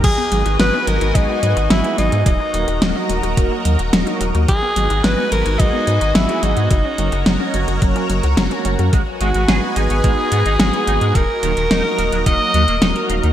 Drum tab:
CC |x---------------|----------------|----------------|----------------|
HH |x-xxx-xxx-xxxxxx|x-xxx-xxx-xxxxxx|x-xxx-xxx-xxxxxx|x-xxx-xxxxxxxxxx|
SD |----o-------o---|----o-------o---|----o-------o---|----o-------o---|
BD |o-------o-------|o-------o-------|o-------o-------|o-------o-------|

CC |----------------|----------------|
HH |x-xxx-xxx-xxxxxx|x-xxx-xxx-xxxxxx|
SD |----o-------o---|----o-------o---|
BD |o-------o-------|o-------o-------|